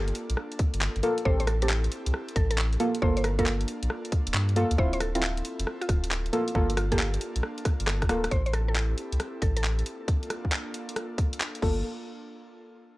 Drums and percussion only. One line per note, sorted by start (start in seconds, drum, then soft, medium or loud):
0.08 closed hi-hat medium
0.15 open hi-hat loud
0.30 closed hi-hat medium
0.37 cross-stick medium
0.52 closed hi-hat soft
0.59 kick loud
0.59 open hi-hat loud
0.74 closed hi-hat medium
0.81 clap loud
0.96 closed hi-hat soft
1.03 open hi-hat loud
1.18 closed hi-hat medium
1.25 kick loud
1.40 closed hi-hat medium
1.47 cross-stick medium
1.47 open hi-hat loud
1.62 closed hi-hat medium
1.69 clap loud
1.84 closed hi-hat medium
1.92 open hi-hat loud
2.06 closed hi-hat medium
2.14 cross-stick medium
2.28 closed hi-hat soft
2.36 kick loud
2.36 open hi-hat loud
2.51 closed hi-hat medium
2.58 clap loud
2.73 closed hi-hat soft
2.80 open hi-hat loud
2.95 closed hi-hat medium
3.02 kick loud
3.17 closed hi-hat medium
3.24 cross-stick medium
3.24 open hi-hat loud
3.39 kick medium
3.39 closed hi-hat medium
3.46 clap loud
3.61 closed hi-hat medium
3.68 open hi-hat loud
3.83 closed hi-hat medium
3.90 cross-stick medium
4.05 closed hi-hat soft
4.12 kick loud
4.12 open hi-hat loud
4.27 closed hi-hat medium
4.34 clap loud
4.49 closed hi-hat soft
4.56 open hi-hat loud
4.71 closed hi-hat medium
4.78 kick loud
4.93 closed hi-hat medium
5.01 cross-stick medium
5.01 open hi-hat loud
5.15 closed hi-hat medium
5.23 clap loud
5.37 closed hi-hat medium
5.45 open hi-hat loud
5.60 closed hi-hat medium
5.67 cross-stick medium
5.82 closed hi-hat soft
5.89 kick loud
5.89 open hi-hat loud
6.04 closed hi-hat medium
6.11 clap loud
6.26 closed hi-hat soft
6.33 open hi-hat loud
6.48 closed hi-hat medium
6.55 kick loud
6.70 closed hi-hat medium
6.77 cross-stick medium
6.77 open hi-hat loud
6.92 kick medium
6.92 closed hi-hat medium
6.99 clap loud
7.14 closed hi-hat medium
7.21 open hi-hat loud
7.36 closed hi-hat medium
7.43 cross-stick medium
7.58 closed hi-hat soft
7.65 kick loud
7.65 cross-stick medium
7.65 open hi-hat loud
7.80 closed hi-hat medium
7.87 cross-stick medium
7.87 clap loud
8.02 kick medium
8.02 cross-stick medium
8.02 closed hi-hat soft
8.09 cross-stick loud
8.09 open hi-hat loud
8.24 cross-stick medium
8.24 closed hi-hat medium
8.31 kick loud
8.31 closed hi-hat medium
8.46 closed hi-hat soft
8.54 cross-stick medium
8.54 open hi-hat loud
8.76 clap loud
8.98 open hi-hat loud
9.12 closed hi-hat medium
9.20 cross-stick medium
9.20 closed hi-hat medium
9.42 kick loud
9.42 open hi-hat loud
9.57 closed hi-hat medium
9.64 clap loud
9.79 closed hi-hat medium
9.86 open hi-hat loud
10.08 kick loud
10.08 closed hi-hat medium
10.23 closed hi-hat soft
10.30 cross-stick medium
10.30 open hi-hat loud
10.45 kick medium
10.52 clap loud
10.74 open hi-hat loud
10.89 closed hi-hat medium
10.96 cross-stick medium
10.96 closed hi-hat medium
11.18 kick loud
11.18 open hi-hat loud
11.33 closed hi-hat medium
11.40 clap loud
11.55 closed hi-hat medium
11.62 kick loud
11.62 crash medium